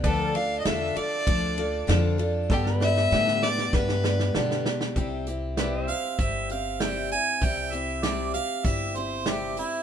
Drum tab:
RD |x-x-x-x-x-x-x-x-|----------------|----------------|----------------|
HH |----------------|----------------|x-x-x-x-x-x-x-x-|x-x-x-x-x-x-x-x-|
SD |----o-------o---|oooooooooooooooo|----o-------o---|----o-------o---|
BD |o-------o-------|o-------o-------|o-------o-------|o-------o-------|